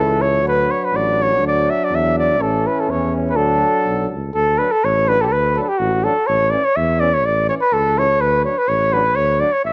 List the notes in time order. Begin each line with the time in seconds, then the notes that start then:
Already playing: C#2 E3 C#4 A4
0.21 C#5
0.43 D2 F#3 D4
0.48 B4
0.71 C#5
0.85 B4
0.92 A1 D5
1.22 C#5
1.41 D2
1.47 D5
1.70 E5
1.85 D5
1.90 E2
1.95 E5
2.19 D5
2.39 A1 E3 C#4 A4
2.67 B4
2.80 A4
2.88 E2 C#5
3.30 B4
3.36 D2 F#3 D4 A4
3.86 B1
4.10 C#2
4.35 D2 A4
4.59 F#3 D4 B4
4.72 A4
4.83 A1 C#5
5.07 F#3 D4 B4
5.21 G4 A4
5.26 A4
5.32 D2 B4
5.57 F#3 D4 A4 B4
5.63 A4
5.69 G4
5.78 A1 F#4
6.03 F#3 D4 A4
6.27 A1 C#5
6.50 E3 C#4 D5
6.64 C#5
6.76 E2 E5
7.00 E3 C#4 D5
7.14 C#5
7.24 A1 D5
7.48 E3 C#4 C#5
7.61 B4
7.72 C#2 A4
7.95 E3 C#4 C#5
8.20 D2 B4
8.44 F#3 D4 C#5
8.58 B4
8.68 A1 C#5
8.91 F#3 D4 B4
9.16 D2 C#5
9.39 F#3 D4 D5
9.53 C#5
9.64 A1 E5